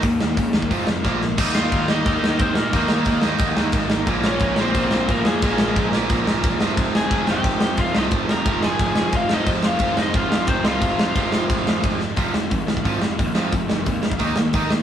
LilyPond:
<<
  \new Staff \with { instrumentName = "Lead electric guitar" } { \time 4/4 \key f \minor \tempo 4 = 178 r1 | r8 <f' f''>4 <ees' ees''>4. <c' c''>8 <bes bes'>8~ | <bes bes'>4. r2 r8 | r8 <des' des''>4 <c' c''>4. <bes bes'>8 <aes aes'>8~ |
<aes aes'>4. r2 r8 | r8 <aes' aes''>4 <g' g''>4. <f' f''>8 <ees' ees''>8 | r8 <bes' bes''>4 <aes' aes''>4. <f' f''>8 <ees' ees''>8 | r8 <f' f''>4 <ees' ees''>8 <f' f''>4 <c' c''>8 <f' f''>8~ |
<f' f''>2. r4 | r1 | r1 | }
  \new Staff \with { instrumentName = "Distorted electric guitar" } { \clef bass \time 4/4 \key f \minor <ees bes>8 <ees bes>8 <ees bes>8 <ees bes>8 <f c' f'>8 <f c'>8 <bes, f bes>8 <bes, f>8 | <ees g bes ees'>1 | <ees g bes ees'>1 | <bes, f bes des'>1 |
<bes, f bes des'>2.~ <bes, f bes des'>8 <f, c f aes c'>8~ | <f, c f aes c'>2.~ <f, c f aes c'>8 <f, c f aes c'>8~ | <f, c f aes c'>2.~ <f, c f aes c'>8 <f, c f aes c'>8~ | <f, c f aes c'>2.~ <f, c f aes c'>8 <f, c f aes c'>8~ |
<f, c f aes c'>2.~ <f, c f aes c'>8 r8 | <f c' f'>8 <f c'>8 <f c'>8 <f c'>8 <f c' f'>8 <f c'>8 <f c'>8 <f c' f'>8 | <f c'>8 <f c'>8 <f c'>8 <f c'>8 <ees bes ees'>8 <ees bes>8 <ees bes ees'>8 <ees bes>8 | }
  \new Staff \with { instrumentName = "Overdriven electric guitar" } { \clef bass \time 4/4 \key f \minor <ees bes>8 <ees bes>8 <ees bes>8 <ees bes>8 <f, c f>8 <f, c>8 <bes, f bes>8 <bes, f>8 | <ees bes ees'>4. <ees bes ees'>2~ <ees bes ees'>8 | <ees bes ees'>4. <ees bes ees'>2~ <ees bes ees'>8 | <bes, f bes>4. <bes, f bes>2~ <bes, f bes>8 |
<bes, f bes>4. <bes, f bes>2 <f, c f>8~ | <f, c f>4 <f, c f>2~ <f, c f>8 <f, c f>8~ | <f, c f>4 <f, c f>2~ <f, c f>8 <f, c f>8~ | <f, c f>4 <f, c f>2~ <f, c f>8 <f, c f>8~ |
<f, c f>4 <f, c f>2~ <f, c f>8 r8 | <f, c f>8 <f, c>8 <f, c>8 <f, c>8 <f, c f>8 <f, c>8 <f, c>8 <f, c f>8 | <f, c>8 <f, c>8 <f, c>8 <f, c>8 <ees bes ees'>8 <ees bes>8 <ees bes ees'>8 <ees bes>8 | }
  \new Staff \with { instrumentName = "Picked electric bass" } { \clef bass \time 4/4 \key f \minor ees,8 ees,8 des8 ees,8 f,,8 f,,8 bes,,4 | ees,4 ees,8 ees,8 ees,8 ees,8 ees,8 bes,8 | ees,8 ees,8 ees,4 ees,8 ees,8 aes,,4 | bes,,4 bes,,8 bes,,8 bes,,8 bes,,8 bes,,8 f,8 |
bes,,8 bes,,8 bes,,4 bes,,8 bes,,8 e,,8 f,,8 | f,,4 f,,8 f,,8 f,,8 f,,8 f,,8 c,8 | f,,8 f,,8 f,,4 f,,8 f,,8 f,,4 | f,,4 f,,8 f,,8 f,,8 f,,8 f,,8 c,8 |
f,,8 f,,8 f,,4 f,,8 f,,8 f,,4 | f,,8 f,,8 aes,,4 aes,,8 f,,8 ees,8 f,8 | f,,8 f,,8 ees,8 f,,8 ees,8 ees,8 ees,4 | }
  \new DrumStaff \with { instrumentName = "Drums" } \drummode { \time 4/4 <hho bd>8 sn8 <hho bd>8 sn16 bd16 <hho bd>8 sn8 <bd sn>8 sn8 | <cymc bd>8 sn8 <cymc bd>8 sn8 <cymc bd>8 sn8 <cymc bd>8 sn8 | <cymc bd>8 sn8 <cymc bd>8 sn8 <cymc bd>8 sn8 <cymc bd>8 sn8 | <cymc bd>8 sn8 <cymc bd>8 sn8 <cymc bd>8 sn8 <cymc bd>8 sn8 |
<cymc bd>8 sn8 <cymc bd>8 sn8 <cymc bd>8 sn8 <cymc bd>8 sn8 | <cymc bd>8 sn8 <cymc bd>8 sn8 <cymc bd>8 sn8 <cymc bd>8 sn8 | <cymc bd>8 sn8 <cymc bd>8 sn8 <cymc bd>8 sn8 <cymc bd>8 sn8 | <cymc bd>8 sn8 <cymc bd>8 sn8 <cymc bd>8 sn8 <cymc bd>8 sn8 |
<cymc bd>8 sn8 <cymc bd>8 sn8 <cymc bd>8 sn8 <cymc bd>8 sn8 | <hho bd>8 sn8 <hho bd>8 sn16 bd16 <hho bd>8 sn8 <hho bd>8 sn8 | <hho bd>8 sn8 <hho bd>8 sn16 bd16 <hho bd>8 sn8 <hho bd>8 sn8 | }
>>